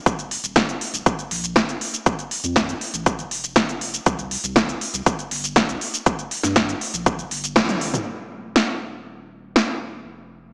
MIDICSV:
0, 0, Header, 1, 3, 480
1, 0, Start_track
1, 0, Key_signature, -2, "minor"
1, 0, Tempo, 500000
1, 60, Time_signature, 4, 2, 24, 8
1, 10111, End_track
2, 0, Start_track
2, 0, Title_t, "Sub bass"
2, 0, Program_c, 0, 38
2, 60, Note_on_c, 0, 27, 101
2, 351, Note_off_c, 0, 27, 0
2, 421, Note_on_c, 0, 27, 102
2, 711, Note_off_c, 0, 27, 0
2, 901, Note_on_c, 0, 27, 88
2, 977, Note_off_c, 0, 27, 0
2, 1260, Note_on_c, 0, 34, 85
2, 1551, Note_off_c, 0, 34, 0
2, 1621, Note_on_c, 0, 27, 96
2, 1697, Note_off_c, 0, 27, 0
2, 1981, Note_on_c, 0, 29, 93
2, 2058, Note_off_c, 0, 29, 0
2, 2341, Note_on_c, 0, 41, 85
2, 2631, Note_off_c, 0, 41, 0
2, 2821, Note_on_c, 0, 33, 89
2, 3111, Note_off_c, 0, 33, 0
2, 3181, Note_on_c, 0, 29, 83
2, 3471, Note_off_c, 0, 29, 0
2, 3542, Note_on_c, 0, 29, 82
2, 3831, Note_off_c, 0, 29, 0
2, 3902, Note_on_c, 0, 36, 97
2, 4192, Note_off_c, 0, 36, 0
2, 4261, Note_on_c, 0, 36, 101
2, 4551, Note_off_c, 0, 36, 0
2, 4742, Note_on_c, 0, 36, 88
2, 4817, Note_off_c, 0, 36, 0
2, 5101, Note_on_c, 0, 31, 82
2, 5392, Note_off_c, 0, 31, 0
2, 5462, Note_on_c, 0, 36, 100
2, 5537, Note_off_c, 0, 36, 0
2, 5821, Note_on_c, 0, 31, 94
2, 5898, Note_off_c, 0, 31, 0
2, 6182, Note_on_c, 0, 43, 88
2, 6471, Note_off_c, 0, 43, 0
2, 6661, Note_on_c, 0, 34, 91
2, 6951, Note_off_c, 0, 34, 0
2, 7020, Note_on_c, 0, 31, 85
2, 7311, Note_off_c, 0, 31, 0
2, 7381, Note_on_c, 0, 31, 86
2, 7671, Note_off_c, 0, 31, 0
2, 7740, Note_on_c, 0, 27, 84
2, 9637, Note_off_c, 0, 27, 0
2, 9660, Note_on_c, 0, 29, 87
2, 10111, Note_off_c, 0, 29, 0
2, 10111, End_track
3, 0, Start_track
3, 0, Title_t, "Drums"
3, 60, Note_on_c, 9, 36, 106
3, 60, Note_on_c, 9, 42, 61
3, 67, Note_on_c, 9, 69, 56
3, 156, Note_off_c, 9, 36, 0
3, 156, Note_off_c, 9, 42, 0
3, 163, Note_off_c, 9, 69, 0
3, 181, Note_on_c, 9, 42, 37
3, 187, Note_on_c, 9, 69, 32
3, 277, Note_off_c, 9, 42, 0
3, 283, Note_off_c, 9, 69, 0
3, 300, Note_on_c, 9, 46, 99
3, 396, Note_off_c, 9, 46, 0
3, 421, Note_on_c, 9, 42, 37
3, 428, Note_on_c, 9, 69, 65
3, 517, Note_off_c, 9, 42, 0
3, 524, Note_off_c, 9, 69, 0
3, 537, Note_on_c, 9, 38, 109
3, 540, Note_on_c, 9, 36, 115
3, 541, Note_on_c, 9, 42, 60
3, 547, Note_on_c, 9, 69, 55
3, 633, Note_off_c, 9, 38, 0
3, 636, Note_off_c, 9, 36, 0
3, 637, Note_off_c, 9, 42, 0
3, 643, Note_off_c, 9, 69, 0
3, 661, Note_on_c, 9, 42, 36
3, 668, Note_on_c, 9, 69, 34
3, 757, Note_off_c, 9, 42, 0
3, 764, Note_off_c, 9, 69, 0
3, 780, Note_on_c, 9, 46, 89
3, 876, Note_off_c, 9, 46, 0
3, 901, Note_on_c, 9, 42, 37
3, 907, Note_on_c, 9, 69, 66
3, 997, Note_off_c, 9, 42, 0
3, 1003, Note_off_c, 9, 69, 0
3, 1020, Note_on_c, 9, 36, 116
3, 1020, Note_on_c, 9, 42, 63
3, 1026, Note_on_c, 9, 69, 56
3, 1116, Note_off_c, 9, 36, 0
3, 1116, Note_off_c, 9, 42, 0
3, 1122, Note_off_c, 9, 69, 0
3, 1141, Note_on_c, 9, 42, 37
3, 1147, Note_on_c, 9, 69, 34
3, 1237, Note_off_c, 9, 42, 0
3, 1243, Note_off_c, 9, 69, 0
3, 1260, Note_on_c, 9, 46, 109
3, 1356, Note_off_c, 9, 46, 0
3, 1381, Note_on_c, 9, 42, 38
3, 1387, Note_on_c, 9, 69, 67
3, 1477, Note_off_c, 9, 42, 0
3, 1483, Note_off_c, 9, 69, 0
3, 1496, Note_on_c, 9, 38, 110
3, 1500, Note_on_c, 9, 42, 61
3, 1501, Note_on_c, 9, 36, 109
3, 1506, Note_on_c, 9, 69, 55
3, 1592, Note_off_c, 9, 38, 0
3, 1596, Note_off_c, 9, 42, 0
3, 1597, Note_off_c, 9, 36, 0
3, 1602, Note_off_c, 9, 69, 0
3, 1621, Note_on_c, 9, 42, 37
3, 1627, Note_on_c, 9, 69, 32
3, 1717, Note_off_c, 9, 42, 0
3, 1723, Note_off_c, 9, 69, 0
3, 1740, Note_on_c, 9, 46, 84
3, 1836, Note_off_c, 9, 46, 0
3, 1861, Note_on_c, 9, 42, 37
3, 1867, Note_on_c, 9, 69, 65
3, 1957, Note_off_c, 9, 42, 0
3, 1963, Note_off_c, 9, 69, 0
3, 1980, Note_on_c, 9, 42, 61
3, 1981, Note_on_c, 9, 36, 109
3, 1987, Note_on_c, 9, 69, 58
3, 2076, Note_off_c, 9, 42, 0
3, 2077, Note_off_c, 9, 36, 0
3, 2083, Note_off_c, 9, 69, 0
3, 2101, Note_on_c, 9, 42, 38
3, 2107, Note_on_c, 9, 69, 32
3, 2197, Note_off_c, 9, 42, 0
3, 2203, Note_off_c, 9, 69, 0
3, 2220, Note_on_c, 9, 46, 97
3, 2316, Note_off_c, 9, 46, 0
3, 2341, Note_on_c, 9, 42, 38
3, 2347, Note_on_c, 9, 69, 62
3, 2437, Note_off_c, 9, 42, 0
3, 2443, Note_off_c, 9, 69, 0
3, 2457, Note_on_c, 9, 38, 113
3, 2460, Note_on_c, 9, 42, 64
3, 2461, Note_on_c, 9, 36, 116
3, 2467, Note_on_c, 9, 69, 58
3, 2553, Note_off_c, 9, 38, 0
3, 2556, Note_off_c, 9, 42, 0
3, 2557, Note_off_c, 9, 36, 0
3, 2563, Note_off_c, 9, 69, 0
3, 2581, Note_on_c, 9, 42, 37
3, 2588, Note_on_c, 9, 69, 34
3, 2677, Note_off_c, 9, 42, 0
3, 2684, Note_off_c, 9, 69, 0
3, 2700, Note_on_c, 9, 46, 85
3, 2796, Note_off_c, 9, 46, 0
3, 2821, Note_on_c, 9, 42, 40
3, 2828, Note_on_c, 9, 69, 69
3, 2917, Note_off_c, 9, 42, 0
3, 2924, Note_off_c, 9, 69, 0
3, 2940, Note_on_c, 9, 42, 66
3, 2941, Note_on_c, 9, 36, 110
3, 2946, Note_on_c, 9, 69, 61
3, 3036, Note_off_c, 9, 42, 0
3, 3037, Note_off_c, 9, 36, 0
3, 3042, Note_off_c, 9, 69, 0
3, 3061, Note_on_c, 9, 42, 39
3, 3067, Note_on_c, 9, 69, 34
3, 3157, Note_off_c, 9, 42, 0
3, 3163, Note_off_c, 9, 69, 0
3, 3180, Note_on_c, 9, 46, 102
3, 3276, Note_off_c, 9, 46, 0
3, 3301, Note_on_c, 9, 42, 40
3, 3308, Note_on_c, 9, 69, 68
3, 3397, Note_off_c, 9, 42, 0
3, 3404, Note_off_c, 9, 69, 0
3, 3417, Note_on_c, 9, 38, 108
3, 3420, Note_on_c, 9, 42, 61
3, 3421, Note_on_c, 9, 36, 110
3, 3427, Note_on_c, 9, 69, 57
3, 3513, Note_off_c, 9, 38, 0
3, 3516, Note_off_c, 9, 42, 0
3, 3517, Note_off_c, 9, 36, 0
3, 3523, Note_off_c, 9, 69, 0
3, 3541, Note_on_c, 9, 42, 37
3, 3548, Note_on_c, 9, 69, 34
3, 3637, Note_off_c, 9, 42, 0
3, 3644, Note_off_c, 9, 69, 0
3, 3660, Note_on_c, 9, 46, 87
3, 3756, Note_off_c, 9, 46, 0
3, 3781, Note_on_c, 9, 42, 40
3, 3787, Note_on_c, 9, 69, 65
3, 3877, Note_off_c, 9, 42, 0
3, 3883, Note_off_c, 9, 69, 0
3, 3900, Note_on_c, 9, 42, 65
3, 3902, Note_on_c, 9, 36, 103
3, 3907, Note_on_c, 9, 69, 59
3, 3996, Note_off_c, 9, 42, 0
3, 3998, Note_off_c, 9, 36, 0
3, 4003, Note_off_c, 9, 69, 0
3, 4021, Note_on_c, 9, 42, 38
3, 4027, Note_on_c, 9, 69, 34
3, 4117, Note_off_c, 9, 42, 0
3, 4123, Note_off_c, 9, 69, 0
3, 4140, Note_on_c, 9, 46, 96
3, 4236, Note_off_c, 9, 46, 0
3, 4261, Note_on_c, 9, 42, 39
3, 4268, Note_on_c, 9, 69, 70
3, 4357, Note_off_c, 9, 42, 0
3, 4364, Note_off_c, 9, 69, 0
3, 4376, Note_on_c, 9, 38, 113
3, 4380, Note_on_c, 9, 42, 67
3, 4382, Note_on_c, 9, 36, 108
3, 4387, Note_on_c, 9, 69, 58
3, 4472, Note_off_c, 9, 38, 0
3, 4476, Note_off_c, 9, 42, 0
3, 4478, Note_off_c, 9, 36, 0
3, 4483, Note_off_c, 9, 69, 0
3, 4501, Note_on_c, 9, 42, 41
3, 4508, Note_on_c, 9, 69, 34
3, 4597, Note_off_c, 9, 42, 0
3, 4604, Note_off_c, 9, 69, 0
3, 4621, Note_on_c, 9, 46, 84
3, 4717, Note_off_c, 9, 46, 0
3, 4741, Note_on_c, 9, 42, 40
3, 4748, Note_on_c, 9, 69, 72
3, 4837, Note_off_c, 9, 42, 0
3, 4844, Note_off_c, 9, 69, 0
3, 4861, Note_on_c, 9, 42, 70
3, 4862, Note_on_c, 9, 36, 113
3, 4868, Note_on_c, 9, 69, 60
3, 4957, Note_off_c, 9, 42, 0
3, 4958, Note_off_c, 9, 36, 0
3, 4964, Note_off_c, 9, 69, 0
3, 4982, Note_on_c, 9, 42, 39
3, 4988, Note_on_c, 9, 69, 34
3, 5078, Note_off_c, 9, 42, 0
3, 5084, Note_off_c, 9, 69, 0
3, 5101, Note_on_c, 9, 46, 100
3, 5197, Note_off_c, 9, 46, 0
3, 5222, Note_on_c, 9, 42, 40
3, 5228, Note_on_c, 9, 69, 68
3, 5318, Note_off_c, 9, 42, 0
3, 5324, Note_off_c, 9, 69, 0
3, 5338, Note_on_c, 9, 38, 115
3, 5341, Note_on_c, 9, 42, 64
3, 5342, Note_on_c, 9, 36, 110
3, 5348, Note_on_c, 9, 69, 55
3, 5434, Note_off_c, 9, 38, 0
3, 5437, Note_off_c, 9, 42, 0
3, 5438, Note_off_c, 9, 36, 0
3, 5444, Note_off_c, 9, 69, 0
3, 5462, Note_on_c, 9, 42, 40
3, 5469, Note_on_c, 9, 69, 34
3, 5558, Note_off_c, 9, 42, 0
3, 5565, Note_off_c, 9, 69, 0
3, 5581, Note_on_c, 9, 46, 83
3, 5677, Note_off_c, 9, 46, 0
3, 5701, Note_on_c, 9, 42, 41
3, 5707, Note_on_c, 9, 69, 68
3, 5797, Note_off_c, 9, 42, 0
3, 5803, Note_off_c, 9, 69, 0
3, 5820, Note_on_c, 9, 42, 68
3, 5821, Note_on_c, 9, 36, 109
3, 5827, Note_on_c, 9, 69, 56
3, 5916, Note_off_c, 9, 42, 0
3, 5917, Note_off_c, 9, 36, 0
3, 5923, Note_off_c, 9, 69, 0
3, 5941, Note_on_c, 9, 42, 40
3, 5947, Note_on_c, 9, 69, 35
3, 6037, Note_off_c, 9, 42, 0
3, 6043, Note_off_c, 9, 69, 0
3, 6060, Note_on_c, 9, 46, 92
3, 6156, Note_off_c, 9, 46, 0
3, 6177, Note_on_c, 9, 38, 34
3, 6181, Note_on_c, 9, 42, 41
3, 6187, Note_on_c, 9, 69, 65
3, 6273, Note_off_c, 9, 38, 0
3, 6277, Note_off_c, 9, 42, 0
3, 6283, Note_off_c, 9, 69, 0
3, 6297, Note_on_c, 9, 38, 119
3, 6301, Note_on_c, 9, 36, 111
3, 6301, Note_on_c, 9, 42, 67
3, 6307, Note_on_c, 9, 69, 57
3, 6393, Note_off_c, 9, 38, 0
3, 6397, Note_off_c, 9, 36, 0
3, 6397, Note_off_c, 9, 42, 0
3, 6403, Note_off_c, 9, 69, 0
3, 6421, Note_on_c, 9, 42, 43
3, 6428, Note_on_c, 9, 69, 35
3, 6517, Note_off_c, 9, 42, 0
3, 6524, Note_off_c, 9, 69, 0
3, 6540, Note_on_c, 9, 46, 86
3, 6636, Note_off_c, 9, 46, 0
3, 6661, Note_on_c, 9, 42, 42
3, 6668, Note_on_c, 9, 69, 70
3, 6757, Note_off_c, 9, 42, 0
3, 6764, Note_off_c, 9, 69, 0
3, 6780, Note_on_c, 9, 42, 69
3, 6781, Note_on_c, 9, 36, 114
3, 6787, Note_on_c, 9, 69, 58
3, 6876, Note_off_c, 9, 42, 0
3, 6877, Note_off_c, 9, 36, 0
3, 6883, Note_off_c, 9, 69, 0
3, 6901, Note_on_c, 9, 42, 42
3, 6907, Note_on_c, 9, 69, 36
3, 6997, Note_off_c, 9, 42, 0
3, 7003, Note_off_c, 9, 69, 0
3, 7020, Note_on_c, 9, 46, 105
3, 7116, Note_off_c, 9, 46, 0
3, 7141, Note_on_c, 9, 42, 43
3, 7147, Note_on_c, 9, 69, 72
3, 7237, Note_off_c, 9, 42, 0
3, 7243, Note_off_c, 9, 69, 0
3, 7256, Note_on_c, 9, 38, 117
3, 7260, Note_on_c, 9, 42, 67
3, 7260, Note_on_c, 9, 48, 62
3, 7261, Note_on_c, 9, 36, 110
3, 7266, Note_on_c, 9, 69, 56
3, 7352, Note_off_c, 9, 38, 0
3, 7356, Note_off_c, 9, 42, 0
3, 7356, Note_off_c, 9, 48, 0
3, 7357, Note_off_c, 9, 36, 0
3, 7362, Note_off_c, 9, 69, 0
3, 7381, Note_on_c, 9, 42, 40
3, 7381, Note_on_c, 9, 48, 63
3, 7388, Note_on_c, 9, 69, 34
3, 7477, Note_off_c, 9, 42, 0
3, 7477, Note_off_c, 9, 48, 0
3, 7484, Note_off_c, 9, 69, 0
3, 7500, Note_on_c, 9, 46, 85
3, 7596, Note_off_c, 9, 46, 0
3, 7621, Note_on_c, 9, 42, 40
3, 7621, Note_on_c, 9, 45, 80
3, 7627, Note_on_c, 9, 69, 68
3, 7717, Note_off_c, 9, 42, 0
3, 7717, Note_off_c, 9, 45, 0
3, 7723, Note_off_c, 9, 69, 0
3, 8216, Note_on_c, 9, 38, 109
3, 8312, Note_off_c, 9, 38, 0
3, 9176, Note_on_c, 9, 38, 113
3, 9272, Note_off_c, 9, 38, 0
3, 10111, End_track
0, 0, End_of_file